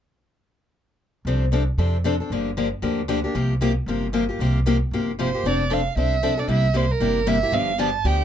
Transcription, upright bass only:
1.25 1.67 C2 medium
1.78 2.20 F2 medium
2.30 2.72 G1 medium
2.82 3.24 D2 medium
3.35 3.77 C2 medium
3.86 4.28 G1 medium
4.39 4.81 C2 medium
4.91 5.33 G1 medium
5.44 5.85 F1 medium
5.96 6.38 C2 medium
6.48 6.90 C2 medium
7.00 7.42 G1 medium
7.52 7.94 G1 medium
8.04 8.24 D2 medium

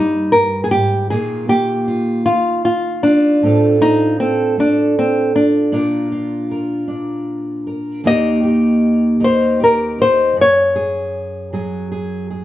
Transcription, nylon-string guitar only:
0.00 0.34 D#4 medium
0.32 0.63 A#4 medium
0.64 0.71 G#4 medium
0.71 1.10 G4 medium
1.10 1.49 G#4 medium
1.49 2.25 G4 medium
2.26 2.61 F4 medium
2.65 3.04 F4 medium
3.03 3.76 D4 medium
3.82 4.17 D#4 medium
4.20 4.55 C4 medium
4.60 4.94 D4 medium
4.99 5.35 C4 medium
5.36 7.63 D4 medium
8.07 9.18 D#5 loud
9.24 9.59 C5 medium
9.64 9.98 A#4 medium
10.02 10.36 C5 medium
10.41 12.28 C#5 medium

